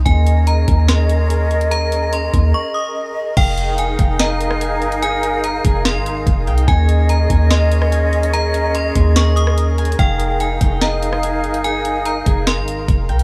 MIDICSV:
0, 0, Header, 1, 6, 480
1, 0, Start_track
1, 0, Key_signature, -4, "minor"
1, 0, Tempo, 413793
1, 68, Time_signature, 4, 2, 24, 8
1, 15350, End_track
2, 0, Start_track
2, 0, Title_t, "Synth bell"
2, 0, Program_c, 0, 98
2, 65, Note_on_c, 0, 80, 92
2, 518, Note_off_c, 0, 80, 0
2, 549, Note_on_c, 0, 82, 82
2, 1000, Note_off_c, 0, 82, 0
2, 1031, Note_on_c, 0, 84, 78
2, 1944, Note_off_c, 0, 84, 0
2, 1988, Note_on_c, 0, 82, 106
2, 2439, Note_off_c, 0, 82, 0
2, 2475, Note_on_c, 0, 84, 85
2, 2923, Note_off_c, 0, 84, 0
2, 2950, Note_on_c, 0, 85, 92
2, 3177, Note_off_c, 0, 85, 0
2, 3183, Note_on_c, 0, 87, 79
2, 3414, Note_off_c, 0, 87, 0
2, 3910, Note_on_c, 0, 79, 103
2, 4360, Note_off_c, 0, 79, 0
2, 4394, Note_on_c, 0, 80, 79
2, 4842, Note_off_c, 0, 80, 0
2, 4869, Note_on_c, 0, 82, 88
2, 5782, Note_off_c, 0, 82, 0
2, 5829, Note_on_c, 0, 80, 101
2, 6280, Note_off_c, 0, 80, 0
2, 6311, Note_on_c, 0, 82, 75
2, 6761, Note_off_c, 0, 82, 0
2, 6790, Note_on_c, 0, 84, 99
2, 7241, Note_off_c, 0, 84, 0
2, 7749, Note_on_c, 0, 80, 98
2, 8200, Note_off_c, 0, 80, 0
2, 8233, Note_on_c, 0, 82, 87
2, 8682, Note_off_c, 0, 82, 0
2, 8711, Note_on_c, 0, 84, 83
2, 9623, Note_off_c, 0, 84, 0
2, 9668, Note_on_c, 0, 82, 111
2, 10120, Note_off_c, 0, 82, 0
2, 10154, Note_on_c, 0, 84, 90
2, 10603, Note_off_c, 0, 84, 0
2, 10629, Note_on_c, 0, 85, 97
2, 10856, Note_off_c, 0, 85, 0
2, 10860, Note_on_c, 0, 87, 84
2, 11092, Note_off_c, 0, 87, 0
2, 11589, Note_on_c, 0, 79, 100
2, 12040, Note_off_c, 0, 79, 0
2, 12071, Note_on_c, 0, 80, 78
2, 12521, Note_off_c, 0, 80, 0
2, 12549, Note_on_c, 0, 82, 87
2, 13462, Note_off_c, 0, 82, 0
2, 13507, Note_on_c, 0, 80, 98
2, 13959, Note_off_c, 0, 80, 0
2, 13989, Note_on_c, 0, 82, 75
2, 14440, Note_off_c, 0, 82, 0
2, 14469, Note_on_c, 0, 84, 100
2, 14920, Note_off_c, 0, 84, 0
2, 15350, End_track
3, 0, Start_track
3, 0, Title_t, "Harp"
3, 0, Program_c, 1, 46
3, 3907, Note_on_c, 1, 77, 102
3, 4629, Note_on_c, 1, 79, 96
3, 4869, Note_on_c, 1, 75, 102
3, 5349, Note_on_c, 1, 80, 96
3, 5830, Note_on_c, 1, 68, 99
3, 5837, Note_off_c, 1, 77, 0
3, 6430, Note_off_c, 1, 79, 0
3, 6543, Note_off_c, 1, 68, 0
3, 6548, Note_on_c, 1, 68, 88
3, 6938, Note_off_c, 1, 75, 0
3, 7089, Note_off_c, 1, 80, 0
3, 7510, Note_on_c, 1, 79, 89
3, 7743, Note_on_c, 1, 80, 112
3, 7812, Note_off_c, 1, 79, 0
3, 8467, Note_off_c, 1, 80, 0
3, 8472, Note_on_c, 1, 80, 87
3, 8708, Note_on_c, 1, 75, 104
3, 9177, Note_off_c, 1, 80, 0
3, 9181, Note_on_c, 1, 80, 96
3, 9185, Note_off_c, 1, 68, 0
3, 9672, Note_on_c, 1, 68, 92
3, 10381, Note_off_c, 1, 68, 0
3, 10386, Note_on_c, 1, 68, 78
3, 10777, Note_off_c, 1, 75, 0
3, 10921, Note_off_c, 1, 80, 0
3, 11347, Note_on_c, 1, 80, 96
3, 11587, Note_on_c, 1, 77, 105
3, 12309, Note_on_c, 1, 79, 97
3, 12379, Note_off_c, 1, 68, 0
3, 12379, Note_off_c, 1, 80, 0
3, 12549, Note_on_c, 1, 75, 98
3, 13028, Note_on_c, 1, 80, 99
3, 13512, Note_on_c, 1, 68, 97
3, 13518, Note_off_c, 1, 77, 0
3, 14111, Note_off_c, 1, 79, 0
3, 14224, Note_off_c, 1, 68, 0
3, 14229, Note_on_c, 1, 68, 91
3, 14618, Note_off_c, 1, 75, 0
3, 14768, Note_off_c, 1, 80, 0
3, 15186, Note_on_c, 1, 79, 89
3, 15350, Note_off_c, 1, 68, 0
3, 15350, Note_off_c, 1, 79, 0
3, 15350, End_track
4, 0, Start_track
4, 0, Title_t, "Flute section"
4, 0, Program_c, 2, 73
4, 70, Note_on_c, 2, 61, 81
4, 71, Note_on_c, 2, 70, 73
4, 71, Note_on_c, 2, 75, 87
4, 72, Note_on_c, 2, 68, 76
4, 3569, Note_off_c, 2, 61, 0
4, 3871, Note_off_c, 2, 70, 0
4, 3871, Note_off_c, 2, 75, 0
4, 3872, Note_off_c, 2, 68, 0
4, 3906, Note_on_c, 2, 77, 91
4, 3907, Note_on_c, 2, 63, 82
4, 3907, Note_on_c, 2, 68, 79
4, 3908, Note_on_c, 2, 70, 78
4, 7709, Note_off_c, 2, 77, 0
4, 7710, Note_off_c, 2, 63, 0
4, 7710, Note_off_c, 2, 70, 0
4, 7749, Note_on_c, 2, 61, 85
4, 7752, Note_on_c, 2, 70, 78
4, 7753, Note_on_c, 2, 75, 96
4, 11269, Note_off_c, 2, 75, 0
4, 11550, Note_off_c, 2, 61, 0
4, 11591, Note_on_c, 2, 77, 89
4, 11593, Note_on_c, 2, 63, 85
4, 15062, Note_off_c, 2, 68, 0
4, 15091, Note_off_c, 2, 63, 0
4, 15350, Note_off_c, 2, 70, 0
4, 15350, Note_off_c, 2, 77, 0
4, 15350, End_track
5, 0, Start_track
5, 0, Title_t, "808-style bass"
5, 0, Program_c, 3, 38
5, 68, Note_on_c, 3, 39, 113
5, 760, Note_off_c, 3, 39, 0
5, 789, Note_on_c, 3, 39, 103
5, 2662, Note_off_c, 3, 39, 0
5, 2710, Note_on_c, 3, 39, 102
5, 2940, Note_off_c, 3, 39, 0
5, 3907, Note_on_c, 3, 29, 109
5, 4599, Note_off_c, 3, 29, 0
5, 4629, Note_on_c, 3, 29, 107
5, 5588, Note_on_c, 3, 31, 104
5, 5605, Note_off_c, 3, 29, 0
5, 6502, Note_off_c, 3, 31, 0
5, 6550, Note_on_c, 3, 29, 105
5, 6909, Note_on_c, 3, 32, 103
5, 6926, Note_off_c, 3, 29, 0
5, 7251, Note_off_c, 3, 32, 0
5, 7270, Note_on_c, 3, 29, 109
5, 7509, Note_on_c, 3, 36, 100
5, 7526, Note_off_c, 3, 29, 0
5, 7737, Note_off_c, 3, 36, 0
5, 7748, Note_on_c, 3, 39, 111
5, 8439, Note_off_c, 3, 39, 0
5, 8469, Note_on_c, 3, 39, 105
5, 10342, Note_off_c, 3, 39, 0
5, 10390, Note_on_c, 3, 39, 105
5, 11543, Note_off_c, 3, 39, 0
5, 11588, Note_on_c, 3, 29, 115
5, 12280, Note_off_c, 3, 29, 0
5, 12308, Note_on_c, 3, 29, 113
5, 13267, Note_on_c, 3, 31, 100
5, 13284, Note_off_c, 3, 29, 0
5, 14181, Note_off_c, 3, 31, 0
5, 14226, Note_on_c, 3, 29, 108
5, 14585, Note_on_c, 3, 32, 100
5, 14602, Note_off_c, 3, 29, 0
5, 14929, Note_off_c, 3, 32, 0
5, 14946, Note_on_c, 3, 29, 107
5, 15186, Note_on_c, 3, 36, 99
5, 15204, Note_off_c, 3, 29, 0
5, 15350, Note_off_c, 3, 36, 0
5, 15350, End_track
6, 0, Start_track
6, 0, Title_t, "Drums"
6, 68, Note_on_c, 9, 36, 110
6, 69, Note_on_c, 9, 42, 66
6, 184, Note_off_c, 9, 36, 0
6, 185, Note_off_c, 9, 42, 0
6, 308, Note_on_c, 9, 42, 65
6, 424, Note_off_c, 9, 42, 0
6, 545, Note_on_c, 9, 42, 70
6, 661, Note_off_c, 9, 42, 0
6, 787, Note_on_c, 9, 42, 80
6, 789, Note_on_c, 9, 36, 88
6, 903, Note_off_c, 9, 42, 0
6, 905, Note_off_c, 9, 36, 0
6, 1026, Note_on_c, 9, 38, 121
6, 1031, Note_on_c, 9, 42, 58
6, 1142, Note_off_c, 9, 38, 0
6, 1147, Note_off_c, 9, 42, 0
6, 1270, Note_on_c, 9, 42, 64
6, 1386, Note_off_c, 9, 42, 0
6, 1510, Note_on_c, 9, 42, 70
6, 1626, Note_off_c, 9, 42, 0
6, 1749, Note_on_c, 9, 42, 38
6, 1865, Note_off_c, 9, 42, 0
6, 1869, Note_on_c, 9, 42, 62
6, 1985, Note_off_c, 9, 42, 0
6, 1990, Note_on_c, 9, 42, 66
6, 2106, Note_off_c, 9, 42, 0
6, 2229, Note_on_c, 9, 42, 64
6, 2345, Note_off_c, 9, 42, 0
6, 2467, Note_on_c, 9, 42, 70
6, 2583, Note_off_c, 9, 42, 0
6, 2710, Note_on_c, 9, 36, 84
6, 2710, Note_on_c, 9, 42, 83
6, 2826, Note_off_c, 9, 36, 0
6, 2826, Note_off_c, 9, 42, 0
6, 3908, Note_on_c, 9, 36, 117
6, 3908, Note_on_c, 9, 42, 68
6, 3908, Note_on_c, 9, 49, 102
6, 4024, Note_off_c, 9, 36, 0
6, 4024, Note_off_c, 9, 42, 0
6, 4024, Note_off_c, 9, 49, 0
6, 4147, Note_on_c, 9, 42, 68
6, 4263, Note_off_c, 9, 42, 0
6, 4385, Note_on_c, 9, 42, 75
6, 4501, Note_off_c, 9, 42, 0
6, 4627, Note_on_c, 9, 42, 86
6, 4629, Note_on_c, 9, 36, 87
6, 4743, Note_off_c, 9, 42, 0
6, 4745, Note_off_c, 9, 36, 0
6, 4866, Note_on_c, 9, 38, 126
6, 4871, Note_on_c, 9, 42, 60
6, 4982, Note_off_c, 9, 38, 0
6, 4987, Note_off_c, 9, 42, 0
6, 5111, Note_on_c, 9, 42, 66
6, 5227, Note_off_c, 9, 42, 0
6, 5227, Note_on_c, 9, 37, 97
6, 5343, Note_off_c, 9, 37, 0
6, 5350, Note_on_c, 9, 42, 74
6, 5466, Note_off_c, 9, 42, 0
6, 5588, Note_on_c, 9, 42, 39
6, 5704, Note_off_c, 9, 42, 0
6, 5708, Note_on_c, 9, 42, 61
6, 5824, Note_off_c, 9, 42, 0
6, 5829, Note_on_c, 9, 42, 69
6, 5945, Note_off_c, 9, 42, 0
6, 6068, Note_on_c, 9, 42, 68
6, 6184, Note_off_c, 9, 42, 0
6, 6307, Note_on_c, 9, 42, 75
6, 6423, Note_off_c, 9, 42, 0
6, 6550, Note_on_c, 9, 36, 87
6, 6550, Note_on_c, 9, 42, 86
6, 6666, Note_off_c, 9, 36, 0
6, 6666, Note_off_c, 9, 42, 0
6, 6788, Note_on_c, 9, 38, 120
6, 6793, Note_on_c, 9, 42, 59
6, 6904, Note_off_c, 9, 38, 0
6, 6909, Note_off_c, 9, 42, 0
6, 7032, Note_on_c, 9, 42, 68
6, 7148, Note_off_c, 9, 42, 0
6, 7269, Note_on_c, 9, 36, 96
6, 7271, Note_on_c, 9, 42, 79
6, 7385, Note_off_c, 9, 36, 0
6, 7387, Note_off_c, 9, 42, 0
6, 7509, Note_on_c, 9, 42, 37
6, 7625, Note_off_c, 9, 42, 0
6, 7629, Note_on_c, 9, 42, 61
6, 7745, Note_off_c, 9, 42, 0
6, 7749, Note_on_c, 9, 36, 113
6, 7749, Note_on_c, 9, 42, 67
6, 7865, Note_off_c, 9, 36, 0
6, 7865, Note_off_c, 9, 42, 0
6, 7990, Note_on_c, 9, 42, 70
6, 8106, Note_off_c, 9, 42, 0
6, 8227, Note_on_c, 9, 42, 71
6, 8343, Note_off_c, 9, 42, 0
6, 8469, Note_on_c, 9, 36, 88
6, 8469, Note_on_c, 9, 42, 86
6, 8585, Note_off_c, 9, 36, 0
6, 8585, Note_off_c, 9, 42, 0
6, 8706, Note_on_c, 9, 38, 125
6, 8711, Note_on_c, 9, 42, 63
6, 8822, Note_off_c, 9, 38, 0
6, 8827, Note_off_c, 9, 42, 0
6, 8950, Note_on_c, 9, 42, 66
6, 9066, Note_off_c, 9, 42, 0
6, 9067, Note_on_c, 9, 37, 102
6, 9183, Note_off_c, 9, 37, 0
6, 9190, Note_on_c, 9, 42, 74
6, 9306, Note_off_c, 9, 42, 0
6, 9429, Note_on_c, 9, 42, 39
6, 9545, Note_off_c, 9, 42, 0
6, 9550, Note_on_c, 9, 42, 65
6, 9666, Note_off_c, 9, 42, 0
6, 9669, Note_on_c, 9, 42, 69
6, 9785, Note_off_c, 9, 42, 0
6, 9908, Note_on_c, 9, 42, 66
6, 10024, Note_off_c, 9, 42, 0
6, 10146, Note_on_c, 9, 42, 73
6, 10262, Note_off_c, 9, 42, 0
6, 10387, Note_on_c, 9, 42, 90
6, 10389, Note_on_c, 9, 36, 90
6, 10503, Note_off_c, 9, 42, 0
6, 10505, Note_off_c, 9, 36, 0
6, 10626, Note_on_c, 9, 38, 121
6, 10630, Note_on_c, 9, 42, 63
6, 10742, Note_off_c, 9, 38, 0
6, 10746, Note_off_c, 9, 42, 0
6, 10869, Note_on_c, 9, 42, 71
6, 10985, Note_off_c, 9, 42, 0
6, 10986, Note_on_c, 9, 37, 97
6, 11102, Note_off_c, 9, 37, 0
6, 11109, Note_on_c, 9, 42, 78
6, 11225, Note_off_c, 9, 42, 0
6, 11347, Note_on_c, 9, 42, 53
6, 11428, Note_off_c, 9, 42, 0
6, 11428, Note_on_c, 9, 42, 53
6, 11508, Note_off_c, 9, 42, 0
6, 11508, Note_on_c, 9, 42, 50
6, 11588, Note_on_c, 9, 36, 116
6, 11589, Note_off_c, 9, 42, 0
6, 11589, Note_on_c, 9, 42, 72
6, 11704, Note_off_c, 9, 36, 0
6, 11705, Note_off_c, 9, 42, 0
6, 11827, Note_on_c, 9, 42, 64
6, 11943, Note_off_c, 9, 42, 0
6, 12066, Note_on_c, 9, 42, 72
6, 12182, Note_off_c, 9, 42, 0
6, 12308, Note_on_c, 9, 42, 89
6, 12309, Note_on_c, 9, 36, 89
6, 12424, Note_off_c, 9, 42, 0
6, 12425, Note_off_c, 9, 36, 0
6, 12545, Note_on_c, 9, 38, 127
6, 12550, Note_on_c, 9, 42, 59
6, 12661, Note_off_c, 9, 38, 0
6, 12666, Note_off_c, 9, 42, 0
6, 12790, Note_on_c, 9, 42, 68
6, 12906, Note_off_c, 9, 42, 0
6, 12907, Note_on_c, 9, 37, 96
6, 13023, Note_off_c, 9, 37, 0
6, 13029, Note_on_c, 9, 42, 77
6, 13145, Note_off_c, 9, 42, 0
6, 13268, Note_on_c, 9, 42, 38
6, 13384, Note_off_c, 9, 42, 0
6, 13387, Note_on_c, 9, 42, 62
6, 13503, Note_off_c, 9, 42, 0
6, 13507, Note_on_c, 9, 42, 67
6, 13623, Note_off_c, 9, 42, 0
6, 13746, Note_on_c, 9, 42, 65
6, 13862, Note_off_c, 9, 42, 0
6, 13984, Note_on_c, 9, 42, 75
6, 14100, Note_off_c, 9, 42, 0
6, 14225, Note_on_c, 9, 42, 87
6, 14227, Note_on_c, 9, 36, 88
6, 14341, Note_off_c, 9, 42, 0
6, 14343, Note_off_c, 9, 36, 0
6, 14465, Note_on_c, 9, 38, 127
6, 14469, Note_on_c, 9, 42, 62
6, 14581, Note_off_c, 9, 38, 0
6, 14585, Note_off_c, 9, 42, 0
6, 14707, Note_on_c, 9, 42, 65
6, 14823, Note_off_c, 9, 42, 0
6, 14946, Note_on_c, 9, 36, 97
6, 14947, Note_on_c, 9, 42, 78
6, 15062, Note_off_c, 9, 36, 0
6, 15063, Note_off_c, 9, 42, 0
6, 15185, Note_on_c, 9, 42, 38
6, 15301, Note_off_c, 9, 42, 0
6, 15304, Note_on_c, 9, 42, 63
6, 15350, Note_off_c, 9, 42, 0
6, 15350, End_track
0, 0, End_of_file